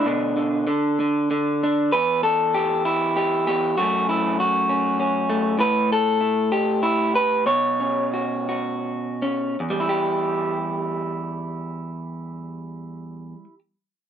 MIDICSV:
0, 0, Header, 1, 2, 480
1, 0, Start_track
1, 0, Tempo, 621762
1, 37, Time_signature, 3, 2, 24, 8
1, 2438, Tempo, 609756
1, 5318, Tempo, 654308
1, 6278, Tempo, 712589
1, 6758, Tempo, 758534
1, 10085, End_track
2, 0, Start_track
2, 0, Title_t, "Clean electric guitar"
2, 0, Program_c, 0, 27
2, 0, Note_on_c, 0, 62, 84
2, 47, Note_on_c, 0, 47, 81
2, 52, Note_on_c, 0, 50, 54
2, 274, Note_off_c, 0, 50, 0
2, 283, Note_on_c, 0, 50, 46
2, 510, Note_off_c, 0, 50, 0
2, 515, Note_off_c, 0, 47, 0
2, 519, Note_on_c, 0, 50, 71
2, 755, Note_off_c, 0, 50, 0
2, 772, Note_on_c, 0, 50, 46
2, 1000, Note_off_c, 0, 50, 0
2, 1009, Note_on_c, 0, 50, 61
2, 1252, Note_off_c, 0, 62, 0
2, 1262, Note_on_c, 0, 62, 46
2, 1464, Note_off_c, 0, 62, 0
2, 1485, Note_on_c, 0, 71, 106
2, 1489, Note_off_c, 0, 50, 0
2, 1494, Note_on_c, 0, 40, 71
2, 1720, Note_off_c, 0, 71, 0
2, 1724, Note_on_c, 0, 69, 97
2, 1964, Note_on_c, 0, 67, 84
2, 2200, Note_off_c, 0, 69, 0
2, 2203, Note_on_c, 0, 64, 76
2, 2434, Note_off_c, 0, 67, 0
2, 2443, Note_on_c, 0, 67, 76
2, 2675, Note_off_c, 0, 67, 0
2, 2682, Note_off_c, 0, 40, 0
2, 2685, Note_on_c, 0, 67, 86
2, 2691, Note_on_c, 0, 40, 62
2, 2921, Note_off_c, 0, 64, 0
2, 2923, Note_off_c, 0, 67, 0
2, 2924, Note_on_c, 0, 66, 85
2, 2925, Note_off_c, 0, 40, 0
2, 2928, Note_on_c, 0, 42, 68
2, 2937, Note_on_c, 0, 54, 50
2, 2943, Note_on_c, 0, 57, 51
2, 2950, Note_on_c, 0, 61, 38
2, 3163, Note_off_c, 0, 66, 0
2, 3173, Note_on_c, 0, 64, 73
2, 3407, Note_off_c, 0, 64, 0
2, 3414, Note_on_c, 0, 66, 68
2, 3644, Note_off_c, 0, 61, 0
2, 3647, Note_on_c, 0, 61, 37
2, 3883, Note_off_c, 0, 61, 0
2, 3886, Note_on_c, 0, 61, 44
2, 4110, Note_off_c, 0, 57, 0
2, 4120, Note_on_c, 0, 57, 43
2, 4328, Note_off_c, 0, 57, 0
2, 4330, Note_off_c, 0, 42, 0
2, 4334, Note_off_c, 0, 54, 0
2, 4350, Note_on_c, 0, 45, 64
2, 4360, Note_off_c, 0, 66, 0
2, 4363, Note_on_c, 0, 71, 86
2, 4386, Note_off_c, 0, 61, 0
2, 4597, Note_off_c, 0, 71, 0
2, 4615, Note_on_c, 0, 69, 90
2, 4838, Note_on_c, 0, 64, 42
2, 5076, Note_off_c, 0, 64, 0
2, 5084, Note_on_c, 0, 67, 72
2, 5323, Note_off_c, 0, 69, 0
2, 5326, Note_on_c, 0, 64, 69
2, 5555, Note_off_c, 0, 64, 0
2, 5566, Note_on_c, 0, 71, 84
2, 5786, Note_off_c, 0, 45, 0
2, 5790, Note_on_c, 0, 47, 65
2, 5792, Note_off_c, 0, 71, 0
2, 5793, Note_off_c, 0, 67, 0
2, 5795, Note_on_c, 0, 73, 79
2, 6039, Note_on_c, 0, 61, 33
2, 6285, Note_on_c, 0, 66, 39
2, 6514, Note_off_c, 0, 66, 0
2, 6522, Note_on_c, 0, 66, 32
2, 6994, Note_off_c, 0, 61, 0
2, 7001, Note_on_c, 0, 61, 33
2, 7211, Note_off_c, 0, 47, 0
2, 7212, Note_off_c, 0, 61, 0
2, 7214, Note_off_c, 0, 66, 0
2, 7241, Note_off_c, 0, 73, 0
2, 7241, Note_on_c, 0, 40, 51
2, 7306, Note_on_c, 0, 55, 46
2, 7368, Note_on_c, 0, 64, 47
2, 7425, Note_on_c, 0, 67, 60
2, 9605, Note_off_c, 0, 40, 0
2, 9670, Note_off_c, 0, 55, 0
2, 9732, Note_off_c, 0, 64, 0
2, 9764, Note_off_c, 0, 67, 0
2, 10085, End_track
0, 0, End_of_file